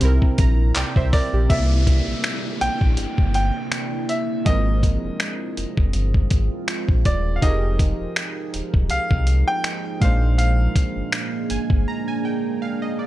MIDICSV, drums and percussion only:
0, 0, Header, 1, 2, 480
1, 0, Start_track
1, 0, Tempo, 740741
1, 971, Time_signature, 4, 2, 24, 8
1, 8467, End_track
2, 0, Start_track
2, 0, Title_t, "Drums"
2, 6, Note_on_c, 9, 42, 66
2, 70, Note_off_c, 9, 42, 0
2, 142, Note_on_c, 9, 36, 86
2, 207, Note_off_c, 9, 36, 0
2, 247, Note_on_c, 9, 42, 62
2, 250, Note_on_c, 9, 36, 97
2, 312, Note_off_c, 9, 42, 0
2, 314, Note_off_c, 9, 36, 0
2, 489, Note_on_c, 9, 39, 101
2, 490, Note_on_c, 9, 42, 64
2, 554, Note_off_c, 9, 39, 0
2, 555, Note_off_c, 9, 42, 0
2, 622, Note_on_c, 9, 36, 89
2, 687, Note_off_c, 9, 36, 0
2, 732, Note_on_c, 9, 36, 87
2, 732, Note_on_c, 9, 46, 69
2, 797, Note_off_c, 9, 36, 0
2, 797, Note_off_c, 9, 46, 0
2, 971, Note_on_c, 9, 36, 111
2, 972, Note_on_c, 9, 42, 66
2, 1036, Note_off_c, 9, 36, 0
2, 1037, Note_off_c, 9, 42, 0
2, 1211, Note_on_c, 9, 36, 83
2, 1213, Note_on_c, 9, 42, 58
2, 1276, Note_off_c, 9, 36, 0
2, 1278, Note_off_c, 9, 42, 0
2, 1450, Note_on_c, 9, 26, 110
2, 1450, Note_on_c, 9, 42, 62
2, 1515, Note_off_c, 9, 26, 0
2, 1515, Note_off_c, 9, 42, 0
2, 1693, Note_on_c, 9, 42, 57
2, 1758, Note_off_c, 9, 42, 0
2, 1822, Note_on_c, 9, 36, 88
2, 1887, Note_off_c, 9, 36, 0
2, 1925, Note_on_c, 9, 42, 65
2, 1990, Note_off_c, 9, 42, 0
2, 2062, Note_on_c, 9, 36, 83
2, 2126, Note_off_c, 9, 36, 0
2, 2166, Note_on_c, 9, 42, 57
2, 2231, Note_off_c, 9, 42, 0
2, 2408, Note_on_c, 9, 26, 102
2, 2409, Note_on_c, 9, 42, 62
2, 2473, Note_off_c, 9, 26, 0
2, 2474, Note_off_c, 9, 42, 0
2, 2651, Note_on_c, 9, 42, 58
2, 2716, Note_off_c, 9, 42, 0
2, 2890, Note_on_c, 9, 36, 110
2, 2890, Note_on_c, 9, 42, 66
2, 2955, Note_off_c, 9, 36, 0
2, 2955, Note_off_c, 9, 42, 0
2, 3130, Note_on_c, 9, 36, 86
2, 3132, Note_on_c, 9, 42, 61
2, 3195, Note_off_c, 9, 36, 0
2, 3197, Note_off_c, 9, 42, 0
2, 3369, Note_on_c, 9, 26, 105
2, 3369, Note_on_c, 9, 42, 64
2, 3433, Note_off_c, 9, 26, 0
2, 3433, Note_off_c, 9, 42, 0
2, 3612, Note_on_c, 9, 42, 55
2, 3677, Note_off_c, 9, 42, 0
2, 3742, Note_on_c, 9, 36, 94
2, 3807, Note_off_c, 9, 36, 0
2, 3845, Note_on_c, 9, 42, 62
2, 3910, Note_off_c, 9, 42, 0
2, 3981, Note_on_c, 9, 36, 81
2, 4046, Note_off_c, 9, 36, 0
2, 4086, Note_on_c, 9, 42, 57
2, 4089, Note_on_c, 9, 36, 88
2, 4150, Note_off_c, 9, 42, 0
2, 4153, Note_off_c, 9, 36, 0
2, 4328, Note_on_c, 9, 26, 94
2, 4329, Note_on_c, 9, 42, 60
2, 4392, Note_off_c, 9, 26, 0
2, 4393, Note_off_c, 9, 42, 0
2, 4462, Note_on_c, 9, 36, 84
2, 4526, Note_off_c, 9, 36, 0
2, 4570, Note_on_c, 9, 42, 57
2, 4572, Note_on_c, 9, 36, 84
2, 4635, Note_off_c, 9, 42, 0
2, 4636, Note_off_c, 9, 36, 0
2, 4811, Note_on_c, 9, 36, 110
2, 4811, Note_on_c, 9, 42, 71
2, 4875, Note_off_c, 9, 36, 0
2, 4876, Note_off_c, 9, 42, 0
2, 5050, Note_on_c, 9, 36, 90
2, 5052, Note_on_c, 9, 42, 61
2, 5115, Note_off_c, 9, 36, 0
2, 5117, Note_off_c, 9, 42, 0
2, 5289, Note_on_c, 9, 26, 113
2, 5289, Note_on_c, 9, 42, 65
2, 5354, Note_off_c, 9, 26, 0
2, 5354, Note_off_c, 9, 42, 0
2, 5532, Note_on_c, 9, 42, 59
2, 5597, Note_off_c, 9, 42, 0
2, 5662, Note_on_c, 9, 36, 90
2, 5727, Note_off_c, 9, 36, 0
2, 5765, Note_on_c, 9, 42, 62
2, 5829, Note_off_c, 9, 42, 0
2, 5901, Note_on_c, 9, 36, 90
2, 5966, Note_off_c, 9, 36, 0
2, 6006, Note_on_c, 9, 42, 59
2, 6070, Note_off_c, 9, 42, 0
2, 6248, Note_on_c, 9, 26, 94
2, 6249, Note_on_c, 9, 42, 64
2, 6312, Note_off_c, 9, 26, 0
2, 6313, Note_off_c, 9, 42, 0
2, 6490, Note_on_c, 9, 36, 102
2, 6490, Note_on_c, 9, 42, 58
2, 6555, Note_off_c, 9, 36, 0
2, 6555, Note_off_c, 9, 42, 0
2, 6730, Note_on_c, 9, 42, 66
2, 6795, Note_off_c, 9, 42, 0
2, 6970, Note_on_c, 9, 36, 86
2, 6971, Note_on_c, 9, 42, 64
2, 7035, Note_off_c, 9, 36, 0
2, 7036, Note_off_c, 9, 42, 0
2, 7209, Note_on_c, 9, 26, 115
2, 7209, Note_on_c, 9, 42, 67
2, 7273, Note_off_c, 9, 26, 0
2, 7273, Note_off_c, 9, 42, 0
2, 7451, Note_on_c, 9, 42, 59
2, 7516, Note_off_c, 9, 42, 0
2, 7581, Note_on_c, 9, 36, 94
2, 7646, Note_off_c, 9, 36, 0
2, 8467, End_track
0, 0, End_of_file